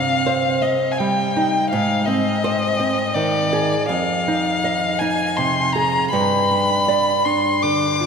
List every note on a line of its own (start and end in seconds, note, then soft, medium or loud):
0.00 1.68 C3 medium
0.00 0.48 C4 soft
0.00 0.63 F5 medium
0.26 0.85 C5 soft
0.62 1.21 C4 soft
0.62 0.93 D#5 medium
0.92 1.00 G#5 medium
0.98 1.58 G3 soft
0.98 1.69 G5 medium
1.37 1.72 D#4 soft
1.70 3.86 G#2 medium
1.70 2.07 F5 medium
2.05 2.65 C4 soft
2.05 3.16 D#5 medium
2.44 3.01 C5 medium
2.80 3.38 C4 soft
3.15 3.75 D#3 soft
3.15 3.88 D5 medium
3.53 3.90 G#4 soft
3.89 6.07 F2 medium
3.89 5.00 F5 medium
4.28 4.86 D#4 soft
4.64 5.23 D#5 soft
4.99 5.60 D#4 soft
4.99 5.38 G#5 medium
5.36 5.97 C3 soft
5.36 5.74 C6 medium
5.73 6.12 G#4 soft
5.73 6.10 A#5 medium
6.11 8.06 G2 medium
6.11 7.27 B5 medium
6.51 7.11 D4 soft
6.88 7.48 D5 soft
7.25 7.86 D4 soft
7.25 7.64 C6 medium
7.62 8.06 D3 soft
7.62 8.06 D6 medium
8.00 8.06 F4 soft